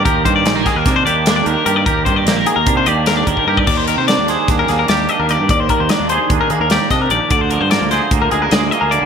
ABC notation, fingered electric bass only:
X:1
M:9/8
L:1/16
Q:3/8=99
K:Eb
V:1 name="Fingered electric bass" clef=bass
E,,2 G,,2 B,,,2 z E,, C,2 E,,4 E,, z G,,2 | E,,2 G,,2 B,,,2 z E,, C,2 E,,4 E,, z G,,2 | E,,3 C,2 E,,2 z E,,2 E,,2 E,,2 z E,,2 G,, | E,,2 z E,, z E,,2 z E,, z E, E,,2 z C,2 B,,, z |
D,,3 G,,2 D,,2 z D,,2 D,,2 D,,2 z D,,2 D,, |]